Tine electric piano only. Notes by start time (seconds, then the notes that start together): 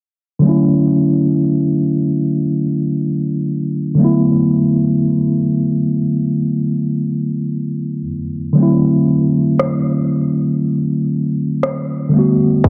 0.39 D3 F#3
0.44 A3 C#4
0.49 E4
3.95 D3 F#3
4.00 A3 B3
4.04 E4
8.53 D3 F#3
8.58 A3 C4
8.62 E4
12.09 D3 G3
12.14 A3 B3
12.19 F#4